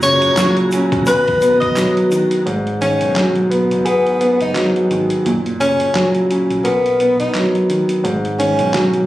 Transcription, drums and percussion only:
0.02 closed hi-hat medium
0.02 shaker soft
0.22 closed hi-hat medium
0.37 snare loud
0.37 clap medium
0.37 closed hi-hat medium
0.37 shaker medium
0.57 closed hi-hat soft
0.71 closed hi-hat medium
0.71 shaker soft
0.92 kick loud
0.92 closed hi-hat medium
1.06 closed hi-hat loud
1.06 shaker medium
1.28 kick loud
1.28 closed hi-hat soft
1.41 closed hi-hat medium
1.41 shaker medium
1.62 kick medium
1.62 closed hi-hat medium
1.76 snare loud
1.76 clap medium
1.76 closed hi-hat medium
1.76 shaker medium
1.97 closed hi-hat soft
2.11 closed hi-hat medium
2.11 shaker medium
2.31 closed hi-hat medium
2.47 closed hi-hat medium
2.67 closed hi-hat soft
2.82 closed hi-hat medium
3.01 closed hi-hat medium
3.16 snare loud
3.16 clap loud
3.16 closed hi-hat medium
3.35 closed hi-hat soft
3.52 closed hi-hat medium
3.71 closed hi-hat soft
3.86 closed hi-hat medium
4.07 closed hi-hat soft
4.21 closed hi-hat medium
4.41 closed hi-hat medium
4.55 snare loud
4.55 clap medium
4.55 closed hi-hat medium
4.76 closed hi-hat soft
4.91 closed hi-hat medium
5.10 closed hi-hat medium
5.26 closed hi-hat medium
5.46 closed hi-hat soft
5.61 closed hi-hat medium
5.80 closed hi-hat medium
5.95 snare loud
5.95 clap loud
5.95 closed hi-hat medium
6.15 closed hi-hat soft
6.31 closed hi-hat medium
6.50 closed hi-hat soft
6.65 closed hi-hat loud
6.86 closed hi-hat soft
7.00 closed hi-hat medium
7.20 closed hi-hat medium
7.34 snare loud
7.34 clap medium
7.34 closed hi-hat medium
7.55 closed hi-hat soft
7.70 closed hi-hat medium
7.89 closed hi-hat medium
8.05 closed hi-hat medium
8.25 closed hi-hat soft
8.40 closed hi-hat medium
8.59 closed hi-hat medium
8.74 snare loud
8.74 clap loud
8.74 closed hi-hat medium
8.94 closed hi-hat soft

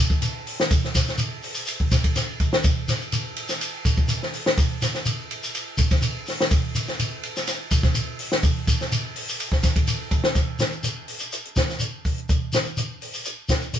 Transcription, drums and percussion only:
0.10 kick medium
0.10 shekere soft
0.22 ride bell medium
0.22 shekere medium
0.47 open hi-hat medium
0.47 shekere soft
0.60 snare medium
0.71 kick loud
0.71 ride bell medium
0.71 shekere medium
0.84 snare soft
0.95 kick medium
0.95 snare soft
0.95 ride bell medium
0.95 shekere loud
1.07 snare soft
1.07 shekere soft
1.18 ride bell medium
1.18 shekere loud
1.43 open hi-hat medium
1.43 shekere soft
1.55 shekere medium
1.66 ride bell medium
1.66 shekere medium
1.80 kick medium
1.92 kick medium
1.92 snare soft
1.92 ride bell medium
1.92 shekere loud
2.04 kick medium
2.04 ride bell medium
2.04 shekere soft
2.16 snare soft
2.16 ride bell medium
2.16 shekere medium
2.40 kick medium
2.40 ride bell medium
2.40 shekere soft
2.53 snare medium
2.63 kick loud
2.63 ride bell medium
2.63 shekere medium
2.88 snare soft
2.88 ride bell medium
2.88 shekere loud
3.01 shekere soft
3.12 ride bell medium
3.12 shekere medium
3.36 ride bell medium
3.36 shekere soft
3.48 snare soft
3.48 shekere medium
3.61 ride bell medium
3.61 shekere medium
3.85 kick medium
3.85 ride bell medium
3.85 shekere loud
3.97 kick medium
3.97 shekere soft
4.08 ride bell medium
4.08 shekere medium
4.23 snare soft
4.33 open hi-hat medium
4.33 shekere soft
4.46 snare medium
4.58 kick loud
4.58 ride bell medium
4.58 shekere medium
4.82 snare soft
4.82 ride bell medium
4.82 shekere medium
4.95 snare soft
4.95 shekere soft
5.06 ride bell medium
5.06 shekere loud
5.31 ride bell medium
5.31 shekere soft
5.43 shekere medium
5.55 ride bell medium
5.55 shekere medium
5.77 kick medium
5.77 ride bell medium
5.77 shekere loud
5.91 kick medium
5.91 snare soft
5.91 ride bell medium
5.91 shekere soft
6.02 ride bell medium
6.02 shekere medium
6.26 snare soft
6.26 open hi-hat medium
6.26 shekere soft
6.41 snare medium
6.50 kick loud
6.50 ride bell medium
6.50 shekere medium
6.75 ride bell medium
6.75 shekere loud
6.88 snare soft
6.88 shekere soft
6.99 ride bell medium
6.99 shekere medium
7.23 ride bell medium
7.23 shekere soft
7.36 snare soft
7.36 shekere medium
7.47 snare soft
7.47 ride bell medium
7.47 shekere medium
7.71 kick medium
7.71 ride bell medium
7.71 shekere loud
7.83 kick medium
7.83 snare soft
7.83 shekere soft
7.95 ride bell medium
7.95 shekere medium
8.19 open hi-hat medium
8.19 shekere soft
8.32 snare medium
8.43 kick loud
8.43 ride bell medium
8.43 shekere medium
8.67 kick medium
8.67 ride bell medium
8.67 shekere medium
8.81 snare soft
8.81 shekere soft
8.92 ride bell soft
8.92 shekere medium
9.16 open hi-hat medium
9.16 shekere soft
9.29 shekere medium
9.40 ride bell medium
9.40 shekere medium
9.52 kick medium
9.52 snare soft
9.63 kick medium
9.63 snare soft
9.63 ride bell medium
9.63 shekere medium
9.76 kick medium
9.76 ride bell medium
9.76 shekere soft
9.87 ride bell medium
9.87 shekere medium
10.11 kick medium
10.11 ride bell medium
10.11 shekere soft
10.24 snare medium
10.35 kick medium
10.35 snare soft
10.35 closed hi-hat medium
10.35 shekere medium
10.59 snare medium
10.59 closed hi-hat medium
10.59 shekere medium
10.72 shekere soft
10.83 closed hi-hat medium
10.83 shekere medium
11.08 open hi-hat medium
11.08 shekere soft
11.19 closed hi-hat soft
11.19 shekere medium
11.32 closed hi-hat medium
11.32 shekere medium
11.45 closed hi-hat soft
11.56 kick medium
11.56 snare medium
11.56 closed hi-hat medium
11.56 shekere medium
11.69 snare soft
11.69 shekere soft
11.80 closed hi-hat medium
11.80 shekere medium
12.05 kick medium
12.05 open hi-hat medium
12.05 shekere soft
12.18 closed hi-hat soft
12.29 kick medium
12.29 closed hi-hat medium
12.29 shekere medium
12.53 snare medium
12.53 closed hi-hat soft
12.53 shekere medium
12.65 shekere soft
12.77 closed hi-hat medium
12.77 shekere medium
13.02 open hi-hat medium
13.02 shekere soft
13.14 shekere medium
13.25 closed hi-hat medium
13.25 shekere medium
13.49 kick medium
13.49 snare medium
13.49 closed hi-hat medium
13.49 shekere medium
13.61 shekere soft
13.73 closed hi-hat medium
13.73 shekere medium

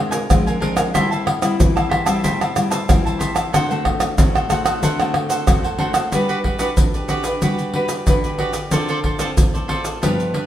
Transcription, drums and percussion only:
0.12 pandeiro medium
0.12 shaker medium
0.30 pandeiro medium
0.30 tamborim medium
0.30 shaker medium
0.30 surdo medium
0.47 pandeiro soft
0.47 shaker soft
0.62 pandeiro medium
0.77 pandeiro medium
0.77 tamborim medium
0.77 shaker medium
0.95 pandeiro medium
0.95 tamborim medium
0.95 shaker medium
0.95 surdo medium
1.12 pandeiro soft
1.12 shaker soft
1.27 pandeiro medium
1.27 tamborim medium
1.42 pandeiro medium
1.42 tamborim medium
1.42 shaker medium
1.60 pandeiro medium
1.60 shaker medium
1.60 surdo medium
1.77 pandeiro soft
1.77 tamborim medium
1.77 shaker soft
1.91 pandeiro medium
1.91 tamborim medium
2.06 pandeiro medium
2.06 tamborim medium
2.06 shaker medium
2.24 pandeiro medium
2.24 shaker medium
2.24 surdo medium
2.41 pandeiro soft
2.41 tamborim medium
2.41 shaker soft
2.56 pandeiro medium
2.56 tamborim medium
2.56 shaker medium
2.72 pandeiro medium
2.72 shaker medium
2.89 pandeiro medium
2.89 tamborim medium
2.89 shaker medium
2.89 surdo loud
3.07 pandeiro soft
3.07 shaker soft
3.21 pandeiro medium
3.21 shaker medium
3.36 pandeiro medium
3.36 tamborim medium
3.36 shaker medium
3.54 pandeiro medium
3.54 tamborim medium
3.54 shaker medium
3.54 surdo soft
3.71 pandeiro soft
3.71 shaker soft
3.85 pandeiro medium
3.85 tamborim medium
3.85 surdo medium
4.00 pandeiro medium
4.00 tamborim medium
4.00 shaker medium
4.18 pandeiro medium
4.18 shaker medium
4.18 surdo loud
4.35 pandeiro soft
4.35 tamborim medium
4.35 shaker soft
4.50 pandeiro medium
4.50 tamborim medium
4.50 shaker medium
4.66 pandeiro medium
4.66 tamborim medium
4.66 shaker medium
4.83 pandeiro medium
4.83 shaker medium
4.83 surdo soft
5.00 pandeiro soft
5.00 tamborim medium
5.00 shaker soft
5.14 pandeiro medium
5.14 tamborim medium
5.30 pandeiro medium
5.30 shaker medium
5.47 pandeiro medium
5.47 tamborim medium
5.47 shaker medium
5.47 surdo medium
5.64 pandeiro soft
5.64 shaker soft
5.79 pandeiro medium
5.94 pandeiro medium
5.94 tamborim medium
5.94 shaker medium
6.12 pandeiro medium
6.12 shaker medium
6.12 surdo medium
6.29 pandeiro soft
6.29 shaker soft
6.44 pandeiro soft
6.44 surdo medium
6.59 pandeiro medium
6.59 shaker medium
6.77 pandeiro medium
6.77 shaker medium
6.77 surdo medium
6.94 pandeiro soft
6.94 shaker soft
7.09 pandeiro soft
7.09 shaker medium
7.24 pandeiro medium
7.24 shaker medium
7.42 pandeiro medium
7.42 shaker medium
7.42 surdo medium
7.59 pandeiro soft
7.59 shaker soft
7.74 pandeiro medium
7.89 pandeiro medium
7.89 shaker medium
8.07 pandeiro medium
8.07 shaker medium
8.07 surdo medium
8.24 pandeiro soft
8.24 shaker soft
8.38 pandeiro soft
8.53 pandeiro medium
8.53 shaker medium
8.71 pandeiro medium
8.71 shaker medium
8.71 surdo medium
8.88 pandeiro soft
8.88 shaker soft
9.04 pandeiro soft
9.04 surdo medium
9.19 pandeiro medium
9.19 shaker medium
9.37 pandeiro medium
9.37 shaker medium
9.37 surdo medium
9.55 pandeiro soft
9.55 shaker soft
9.69 pandeiro soft
9.85 pandeiro medium
9.85 shaker medium
10.03 pandeiro medium
10.03 shaker medium
10.03 surdo medium
10.20 pandeiro soft
10.20 shaker soft
10.34 pandeiro medium

